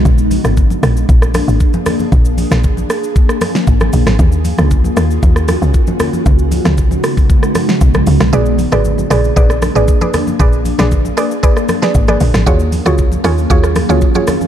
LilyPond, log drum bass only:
\new Staff \with { instrumentName = "Log drum bass" } { \clef bass \time 4/4 \key bes \phrygian \tempo 4 = 116 bes,,8. aes,,8. bes,,8 bes,,8. aes,,16 r4 | bes,,8. bes,,8. r4. aes,,8 bes,,16 aes,,16 | ees,8. des,8. ees,8 ees,8. des,16 r4 | des,8. des,8. r4. ces,8 des,16 ces,16 |
bes,,8. aes,,8. bes,,8 bes,,8. aes,,16 r4 | bes,,8. bes,,8. r4. aes,,8 bes,,16 aes,,16 | ees,8. des,8. ees,8 ees,8. des,16 r4 | }